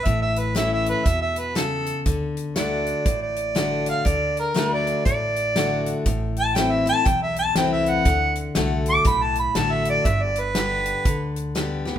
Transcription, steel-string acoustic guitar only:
0.06 1.02 A2 medium
0.55 1.03 E3 medium
0.55 1.04 A3 medium
0.55 1.04 C#4 medium
0.55 1.04 E4 medium
1.55 2.04 C#3 medium
2.06 2.55 D3 medium
2.56 3.04 D3 medium
2.56 3.04 A3 medium
2.56 3.04 D4 medium
2.56 3.05 F#4 medium
3.06 4.02 A2 medium
3.55 4.04 D3 medium
3.55 4.04 A3 medium
3.55 4.04 D4 medium
3.55 4.04 F#4 medium
4.05 4.53 D3 medium
4.54 5.03 D3 medium
4.54 5.04 A3 medium
4.54 5.04 D4 loud
4.54 5.04 F#4 loud
5.05 6.02 A2 medium
5.56 6.04 D3 medium
5.56 6.04 A3 medium
5.56 6.04 D4 medium
5.56 6.05 F#4 medium
6.06 7.02 A2 loud
6.55 6.85 E3 medium
6.55 6.85 A3 medium
6.55 6.85 C4 medium
6.55 6.85 E4 medium
6.86 7.06 C4 medium
6.86 7.05 E4 medium
7.05 8.02 E2 medium
7.56 8.04 E3 medium
7.56 8.04 A3 medium
7.56 8.04 C4 medium
7.56 8.05 E4 medium
8.06 8.54 D3 medium
8.55 9.04 D3 loud
8.55 9.04 A3 medium
8.55 9.04 D4 medium
8.55 9.04 F#4 loud
9.05 10.01 A2 medium
9.55 10.03 D3 medium
9.55 10.04 A3 medium
9.55 10.04 D4 medium
9.55 10.04 F#4 medium
10.06 11.02 G2 medium
10.55 11.03 D3 medium
10.55 11.04 G3 medium
10.55 11.04 B3 medium
10.55 11.04 G4 loud
11.05 11.54 D3 medium
11.55 11.84 D3 medium
11.55 11.85 G3 medium
11.55 11.85 B3 medium
11.55 11.84 G4 medium
11.85 11.99 B3 soft
11.85 11.99 G4 medium

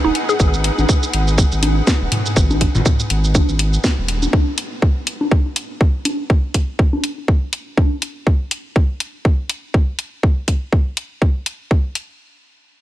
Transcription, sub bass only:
0.04 0.11 D#1 loud
0.40 0.70 G#1 loud
0.78 0.85 G#1 loud
1.13 1.44 G#1 medium
1.52 1.81 G#1 medium
2.01 2.08 D#1 loud
2.36 2.67 G#1 loud
2.75 2.82 G#1 loud
3.10 3.41 G#1 medium
3.49 3.78 G#1 medium
3.98 4.27 D#1 medium

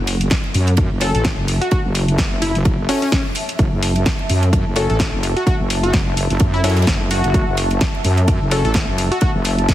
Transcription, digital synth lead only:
1.01 1.10 A4 medium
1.15 1.21 A4 medium
1.61 1.68 F#4 medium
1.72 1.80 F#4 medium
2.42 2.55 E4 medium
2.89 2.99 C#4 medium
3.02 3.09 C#4 medium
3.12 3.21 C#4 medium
4.76 4.85 A4 medium
4.90 4.96 A4 medium
5.37 5.43 F#4 medium
5.47 5.55 F#4 medium
5.83 5.93 F#4 medium
6.54 6.60 E4 medium
6.64 6.72 E4 medium
7.11 7.77 F#4 medium
8.51 8.60 A4 medium
8.65 8.71 A4 medium
9.12 9.18 F#4 medium
9.22 9.30 F#4 medium

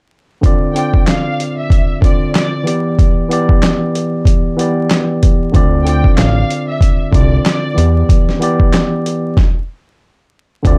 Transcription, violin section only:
0.75 1.04 G5 medium
1.08 1.55 F5 medium
1.59 2.00 E5 medium
2.03 2.32 D5 medium
2.34 2.63 D5 medium
5.84 6.14 G5 medium
6.17 6.65 F5 medium
6.69 7.11 E5 medium
7.15 7.43 D5 medium
7.45 7.74 D5 medium

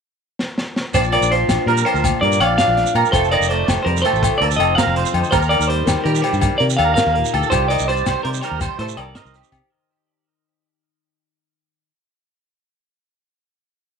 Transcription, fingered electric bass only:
0.94 1.18 A#1 medium
1.21 1.45 A#1 medium
1.48 1.57 A#1 medium
1.66 1.83 A#2 medium
1.94 2.10 D2 medium
2.22 2.38 G2 medium
2.40 2.56 A#1 medium
2.68 2.84 A#1 medium
2.95 3.03 A#2 medium
3.13 3.37 F1 medium
3.40 3.64 F1 medium
3.68 3.76 F1 medium
3.86 4.02 F2 medium
4.13 4.29 A1 medium
4.41 4.57 D2 medium
4.59 4.75 F1 medium
4.87 5.03 F1 medium
5.14 5.22 F2 medium
5.33 5.56 D#2 medium
5.59 5.83 D#2 medium
5.87 5.95 D#2 medium
6.05 6.21 D#3 medium
6.33 6.49 G2 medium
6.60 6.76 C3 medium
6.79 6.95 D#2 medium
7.06 7.22 D#2 medium
7.34 7.42 D2 medium
7.52 7.75 C2 medium
7.80 8.03 C2 medium
8.06 8.14 C2 medium
8.25 8.40 C3 medium
8.51 8.67 D#2 medium
8.79 8.95 A2 medium
8.97 9.13 C2 medium
9.25 9.41 C2 medium
9.52 9.60 C3 medium

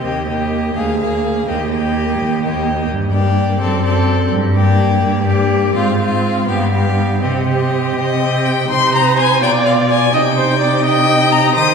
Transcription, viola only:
0.04 0.27 A#3 soft
0.28 0.75 A#3 soft
0.76 0.99 A#3 soft
1.00 1.46 A#3 soft
1.47 1.71 A#3 soft
1.71 2.41 A#3 soft
2.42 2.89 A#3 soft
3.14 3.60 A#3 soft
3.61 3.84 C4 medium
3.84 4.31 C4 soft
4.55 5.25 A#3 medium
5.27 5.74 A#3 soft
5.75 5.98 C4 medium
5.99 6.46 C4 soft
6.48 6.72 B3 soft
6.73 7.21 B3 soft
7.22 7.45 C4 soft
7.46 8.18 C4 soft
8.19 8.68 C4 soft
8.69 9.44 C5 medium
9.42 10.13 D5 medium
10.14 10.22 D#5 medium
10.37 10.60 C5 medium
10.60 10.84 D5 medium
10.85 11.55 D#5 medium
11.56 11.74 C5 medium

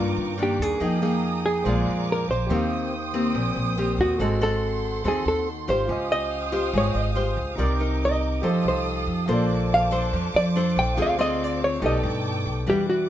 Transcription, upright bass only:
0.00 0.16 G2 medium
0.17 0.56 G2 medium
0.59 0.79 D#2 medium
0.80 1.62 F2 medium
1.65 1.85 A#1 medium
1.86 2.26 F2 medium
2.29 2.49 A#1 medium
2.50 3.31 D#2 medium
3.35 3.55 A#1 medium
3.56 3.96 A#1 medium
3.98 4.18 D#2 medium
4.19 5.01 G#1 loud
5.04 5.24 D#2 loud
5.25 5.65 D#2 medium
5.68 5.88 G#1 medium
5.89 6.70 C#2 medium
6.73 6.94 G#1 loud
6.95 7.34 G#1 medium
7.37 7.57 C#2 medium
7.58 8.39 C2 medium
8.43 8.63 F2 loud
8.64 9.04 C2 medium
9.07 9.27 F2 medium
9.28 10.09 A#1 loud
10.13 10.33 F2 medium
10.34 10.74 F2 medium
10.76 10.96 A#1 medium
10.97 11.78 D2 medium
11.82 12.02 B1 loud
12.03 12.43 G2 loud
12.46 12.66 B1 medium
12.67 13.09 E2 medium

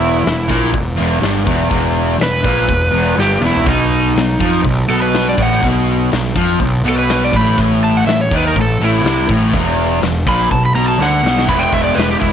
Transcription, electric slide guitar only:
0.00 0.72 E4 medium
2.23 3.16 B4 loud
3.20 3.42 G4 medium
3.45 3.67 E4 medium
3.69 4.63 D#4 medium
4.90 5.01 A4 medium
5.02 5.25 B4 medium
5.29 5.39 D5 medium
5.42 5.64 F#5 medium
6.89 6.98 A4 medium
6.99 7.21 B4 medium
7.24 7.34 D5 medium
7.36 7.58 B5 medium
7.84 7.95 A5 loud
7.97 8.07 F#5 medium
8.07 8.19 E5 medium
8.21 8.32 C#5 medium
8.37 8.46 B4 medium
8.47 8.57 A#4 medium
8.61 8.82 A4 medium
8.84 9.29 E4 loud
10.29 10.51 B5 medium
10.52 10.63 A5 medium
10.65 10.75 B5 medium
10.75 10.87 A#5 medium
10.88 10.99 A5 medium
11.02 11.48 F#5 medium
11.49 11.60 B5 medium
11.59 11.71 G5 medium
11.73 11.83 E5 medium
11.84 11.96 D5 medium
11.95 12.08 B4 medium
12.11 12.20 G4 medium
12.20 12.33 E4 medium

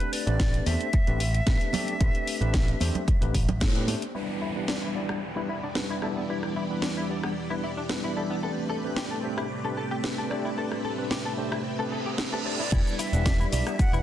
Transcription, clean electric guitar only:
4.15 4.22 E4 medium
4.42 4.49 E4 medium
4.68 4.75 D4 medium
4.82 4.89 E4 medium
5.09 5.13 B3 medium
5.37 5.40 E4 medium
5.49 5.56 E4 medium
5.63 5.67 D4 medium
5.90 5.96 E4 medium
6.03 6.07 A4 medium
6.17 6.21 B3 medium
6.30 6.37 E4 medium
6.56 6.63 E4 medium
6.83 6.90 D4 medium
6.97 7.03 E4 medium
7.24 7.27 B3 medium
7.50 7.54 E4 medium
7.64 7.70 E4 medium
7.77 7.81 D4 medium
8.04 8.10 E4 medium
8.17 8.21 A4 medium
8.30 8.34 B3 medium
8.43 8.50 A4 medium
8.70 8.77 A4 medium
8.97 9.04 G4 medium
9.11 9.17 A4 medium
9.38 9.42 E4 medium
9.65 9.68 A4 medium
9.77 9.84 A4 medium
9.91 9.95 G4 medium
10.18 10.25 A4 medium
10.31 10.35 D5 medium
10.45 10.49 E4 medium
10.58 10.65 A4 medium
10.85 10.92 A4 medium
11.11 11.18 G4 medium
11.25 11.32 A4 medium
11.52 11.56 E4 medium
11.79 11.83 A4 medium
11.92 11.99 A4 medium
12.06 12.10 G4 medium
12.33 12.39 A4 medium
12.46 12.50 D5 medium
12.60 12.63 E4 medium
12.72 12.79 E4 medium
12.99 13.06 E4 medium
13.26 13.33 D4 medium
13.40 13.46 E4 medium
13.67 13.70 B3 medium
13.93 13.97 E4 medium

